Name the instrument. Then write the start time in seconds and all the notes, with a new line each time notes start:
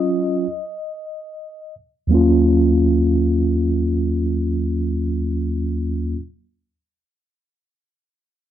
tine electric piano
Already playing: F#3 C#4 F4 D#5
2.07 D#2 F#3 A#3
2.12 C#4 F4